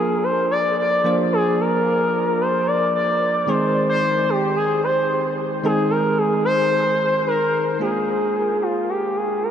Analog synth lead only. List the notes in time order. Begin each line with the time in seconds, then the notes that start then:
0.00 G#4
0.24 C5
0.51 D5
0.78 D5
1.32 G#4
1.60 A#4
2.42 C5
2.67 D5
2.95 D5
3.49 C5
3.90 C5
4.30 G4
4.56 G#4
4.84 C5
5.65 G#4
5.91 A#4
6.18 G#4
6.44 C5
7.27 A#4
7.82 G#4
8.62 F4
8.89 G4
9.16 G#4
9.43 A#4